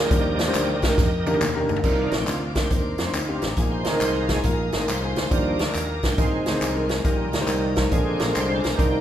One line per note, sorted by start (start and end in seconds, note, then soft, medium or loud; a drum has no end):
0.00 1.37 G4 medium
0.00 1.37 A#4 medium
0.00 1.37 D#5 medium
0.08 0.48 D#2 loud
0.08 0.79 D#3 medium
0.08 0.77 F3 medium
0.08 0.78 G3 medium
0.08 0.37 A#3 medium
0.08 0.37 D4 medium
0.08 0.37 D#4 medium
0.08 0.37 G4 medium
0.08 0.37 A#4 medium
0.08 0.78 D5 medium
0.08 kick loud
0.08 closed hi-hat medium
0.12 tambourine medium
0.39 snare loud
0.39 closed hi-hat medium
0.39 tambourine medium
0.47 0.66 A#3 medium
0.47 0.66 D4 medium
0.47 0.66 D#4 medium
0.47 0.66 G4 medium
0.47 0.67 C5 medium
0.54 0.91 D2 loud
0.54 clap medium
0.54 closed hi-hat loud
0.54 tambourine medium
0.82 1.03 A#3 medium
0.82 1.04 D4 medium
0.82 1.04 D#4 medium
0.82 1.04 G4 medium
0.82 1.04 A#4 medium
0.82 kick medium
0.82 snare loud
0.82 closed hi-hat medium
0.82 tambourine medium
0.98 1.35 F2 medium
0.98 kick loud
0.98 snare medium
0.98 tambourine medium
1.26 1.39 A#3 medium
1.26 1.40 D4 medium
1.26 1.40 D#4 medium
1.26 1.40 G4 medium
1.26 1.40 A#4 loud
1.26 high tom medium
1.26 tambourine medium
1.34 high tom medium
1.41 1.65 D#2 medium
1.41 clap loud
1.41 mid tom medium
1.41 tambourine loud
1.55 1.75 A#3 medium
1.55 1.75 D4 medium
1.55 1.75 D#4 medium
1.55 1.76 G4 medium
1.55 1.76 A#4 loud
1.69 1.82 D2 medium
1.69 floor tom loud
1.69 tambourine soft
1.76 floor tom loud
1.82 2.08 C2 medium
1.82 2.52 C3 medium
1.82 2.16 D#3 medium
1.82 2.17 A#3 medium
1.82 2.10 C4 medium
1.82 2.17 D4 medium
1.82 2.10 D4 medium
1.82 2.11 D#4 medium
1.82 2.11 F4 medium
1.82 2.11 A#4 medium
1.82 3.56 D5 medium
1.82 5.28 A#5 medium
1.82 3.56 C6 medium
1.82 3.56 D6 medium
1.82 kick loud
1.82 crash medium
1.82 tambourine medium
2.11 2.25 A#1 medium
2.11 2.28 G4 loud
2.11 snare loud
2.11 closed hi-hat medium
2.11 tambourine soft
2.20 2.39 C4 medium
2.20 2.39 D4 medium
2.20 2.40 D#4 medium
2.20 2.40 F4 medium
2.27 2.64 D2 medium
2.27 2.57 F4 medium
2.27 clap medium
2.27 closed hi-hat medium
2.27 tambourine medium
2.55 2.65 C4 medium
2.55 2.65 D4 medium
2.55 2.65 D#4 medium
2.55 2.71 G4 medium
2.55 2.65 A#4 medium
2.55 kick medium
2.55 snare loud
2.55 closed hi-hat medium
2.55 tambourine soft
2.70 2.95 D#2 medium
2.70 2.97 C4 medium
2.70 2.97 D4 medium
2.70 2.97 D#4 medium
2.70 2.98 A#4 medium
2.70 kick loud
2.70 closed hi-hat medium
2.70 tambourine medium
2.98 3.12 F2 medium
2.98 3.14 C4 medium
2.98 snare loud
2.98 closed hi-hat medium
2.98 tambourine medium
3.07 3.17 C4 medium
3.07 3.17 D4 medium
3.07 3.18 D#4 medium
3.07 3.18 F4 medium
3.13 3.38 D2 medium
3.13 3.29 D#4 medium
3.13 clap loud
3.13 closed hi-hat medium
3.13 tambourine loud
3.28 3.49 C4 medium
3.28 3.49 D4 medium
3.28 3.49 D#4 medium
3.28 3.42 F4 medium
3.28 3.49 G4 medium
3.42 3.55 A1 medium
3.42 3.50 G4 medium
3.42 snare medium
3.42 closed hi-hat medium
3.42 tambourine soft
3.56 3.82 A#1 medium
3.56 4.26 A#2 medium
3.56 3.84 A#3 medium
3.56 3.84 D#4 medium
3.56 3.84 F4 medium
3.56 3.63 G#4 loud
3.56 3.84 G#4 medium
3.56 6.16 F5 medium
3.56 5.30 G#5 medium
3.56 6.16 D#6 medium
3.56 kick loud
3.56 closed hi-hat medium
3.56 tambourine medium
3.72 3.87 C5 medium
3.83 3.98 D2 medium
3.83 4.40 D#3 soft
3.83 4.40 G#3 soft
3.83 4.41 C4 medium
3.83 4.01 A#4 medium
3.83 snare loud
3.83 closed hi-hat medium
3.83 tambourine medium
3.93 4.13 A#3 medium
3.93 4.13 D#4 medium
3.93 4.13 F4 medium
3.93 4.13 A#4 medium
3.99 4.38 C2 medium
3.99 4.15 C5 medium
3.99 clap medium
3.99 closed hi-hat medium
3.99 tambourine medium
4.15 4.29 A#4 medium
4.29 4.39 A#3 medium
4.29 4.39 D#4 medium
4.29 4.39 F4 medium
4.29 4.45 G#4 medium
4.29 4.39 G#4 medium
4.29 kick medium
4.29 snare loud
4.29 closed hi-hat medium
4.29 tambourine soft
4.43 4.69 A#1 medium
4.43 4.70 A#3 medium
4.43 4.70 D#4 medium
4.43 4.71 F4 medium
4.43 4.89 A#4 medium
4.43 4.71 A#4 medium
4.43 kick loud
4.43 closed hi-hat medium
4.43 tambourine medium
4.72 4.86 G#1 medium
4.72 4.86 D#3 soft
4.72 4.86 G#3 soft
4.72 4.87 C4 soft
4.72 snare loud
4.72 closed hi-hat medium
4.72 tambourine medium
4.80 4.91 A#3 medium
4.80 4.91 D#4 medium
4.80 4.91 F4 medium
4.80 4.91 A#4 medium
4.88 5.13 C2 medium
4.88 5.29 C5 medium
4.88 clap loud
4.88 closed hi-hat medium
4.88 tambourine medium
5.02 5.22 A#3 medium
5.02 5.23 D#4 medium
5.02 5.23 F4 medium
5.02 5.23 G#4 medium
5.16 5.29 D2 medium
5.16 snare loud
5.16 closed hi-hat medium
5.16 tambourine soft
5.30 5.56 D#2 medium
5.30 5.99 D#3 medium
5.30 5.64 F3 medium
5.30 5.64 G3 soft
5.30 5.57 D4 medium
5.30 5.64 D4 medium
5.30 5.57 D#4 medium
5.30 5.57 F4 medium
5.30 5.57 G4 medium
5.30 6.05 A#4 loud
5.30 6.18 G5 medium
5.30 6.18 D6 medium
5.30 kick loud
5.30 closed hi-hat medium
5.30 tambourine medium
5.59 5.73 D2 medium
5.59 snare loud
5.59 closed hi-hat medium
5.59 tambourine soft
5.67 5.86 D4 medium
5.67 5.86 D#4 medium
5.67 5.87 F4 medium
5.67 5.87 A#4 medium
5.75 6.04 D#2 medium
5.75 clap medium
5.75 closed hi-hat medium
5.75 tambourine medium
6.03 6.19 C2 medium
6.03 6.12 D4 medium
6.03 6.12 D#4 medium
6.03 6.12 F4 medium
6.03 6.20 G4 medium
6.03 6.13 A#4 medium
6.03 kick medium
6.03 snare loud
6.03 closed hi-hat medium
6.03 tambourine medium
6.18 6.43 A#1 loud
6.18 6.86 A#2 medium
6.18 6.87 D#3 medium
6.18 6.87 G#3 soft
6.18 6.44 C4 medium
6.18 6.34 C4 medium
6.18 6.44 D#4 medium
6.18 6.32 F4 medium
6.18 6.44 G#4 medium
6.18 6.44 A#4 medium
6.18 7.04 D#5 medium
6.18 7.04 G#5 medium
6.18 9.01 A#5 medium
6.18 7.04 C6 medium
6.18 kick loud
6.18 closed hi-hat medium
6.18 tambourine medium
6.35 6.74 C4 medium
6.46 6.60 D2 medium
6.46 snare loud
6.46 closed hi-hat medium
6.46 tambourine medium
6.53 6.64 C4 medium
6.53 6.64 D#4 medium
6.53 6.65 G#4 medium
6.53 6.65 C5 medium
6.61 6.99 C2 medium
6.61 clap medium
6.61 closed hi-hat medium
6.61 tambourine loud
6.75 6.96 C4 medium
6.75 6.96 D#4 medium
6.75 6.96 G#4 medium
6.75 6.96 A#4 medium
6.89 snare medium
6.89 closed hi-hat medium
6.89 tambourine soft
7.04 7.34 A#1 medium
7.04 7.73 A#2 medium
7.04 7.89 D#3 medium
7.04 7.88 G3 medium
7.04 7.31 A#3 medium
7.04 7.89 A#3 medium
7.04 7.31 D#4 medium
7.04 7.31 G4 medium
7.04 7.31 A#4 loud
7.04 7.92 D#5 medium
7.04 7.92 G5 medium
7.04 7.91 D#6 medium
7.04 kick loud
7.04 closed hi-hat medium
7.04 tambourine medium
7.33 7.46 D2 medium
7.33 snare loud
7.33 closed hi-hat medium
7.33 tambourine medium
7.41 7.60 A#3 medium
7.41 7.60 D#4 medium
7.41 7.60 G4 medium
7.41 7.60 C5 medium
7.48 7.85 C2 medium
7.48 clap medium
7.48 closed hi-hat medium
7.48 tambourine medium
7.76 7.86 A#3 medium
7.76 7.86 D#4 medium
7.76 7.86 G4 medium
7.76 7.86 C5 medium
7.76 kick medium
7.76 snare loud
7.76 closed hi-hat medium
7.76 tambourine soft
7.91 8.17 A#1 medium
7.91 8.60 A#2 medium
7.91 8.60 D3 soft
7.91 8.61 G#3 soft
7.91 8.61 C4 medium
7.91 8.17 D4 medium
7.91 8.18 F4 medium
7.91 8.18 G#4 medium
7.91 8.22 G#4 medium
7.91 8.18 A#4 medium
7.91 8.78 F5 medium
7.91 8.78 G#5 medium
7.91 8.78 D6 medium
7.91 kick loud
7.91 closed hi-hat medium
7.91 tambourine medium
8.19 8.34 A#1 medium
8.19 8.34 A#4 loud
8.19 snare loud
8.19 closed hi-hat medium
8.19 tambourine medium
8.28 8.38 D4 medium
8.28 8.38 F4 medium
8.28 8.39 G#4 medium
8.28 8.39 A#4 medium
8.34 8.60 C2 medium
8.34 8.57 C5 loud
8.34 clap loud
8.34 closed hi-hat medium
8.34 tambourine medium
8.48 8.70 D4 medium
8.48 8.70 F4 medium
8.48 8.70 G#4 medium
8.48 8.70 C5 medium
8.56 8.64 A4 medium
8.60 8.76 A#4 medium
8.60 closed hi-hat medium
8.60 tambourine soft
8.65 8.77 B1 medium
8.65 snare loud
8.76 9.01 C2 medium
8.76 9.01 C3 medium
8.76 9.01 D#3 medium
8.76 9.01 A#3 medium
8.76 9.01 D4 medium
8.76 9.01 D#4 medium
8.76 9.01 G4 loud
8.76 9.01 A#4 medium
8.76 9.01 C5 medium
8.76 9.01 D6 medium
8.76 kick loud
8.76 closed hi-hat medium
8.76 tambourine medium
8.80 9.01 C6 medium